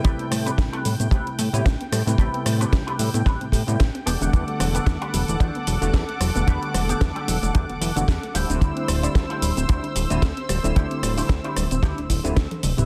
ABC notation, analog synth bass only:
X:1
M:4/4
L:1/16
Q:"Swing 16ths" 1/4=112
K:Ador
V:1 name="Analog synth bass" clef=bass
A,,, z A,, z A,,, z A,, A,, A,,, z A,, A,, A,,, z A,, A,, | A,,, z A,, z A,,, z A,, A,, A,,, A,, A,, A,, A,,, z E,,, E,,, | E,, z E,,, z E,, z E,,, E,,, E,, z E,,, E,,, E,, z E,,, E,,, | E,, z E,,, z E,, z E,,, E,,, E,, E,,, E,,, E,,, E,, z D,,, D,,, |
D,, z D,,, z D,, z D,,, D,,, D,, z D,,, D,,, D,, z D,,, D,,, | D,, z D,,, z D,, z D,,, D,,, D,, D,,, D,,, D,,, D,, z D,,, D,,, |]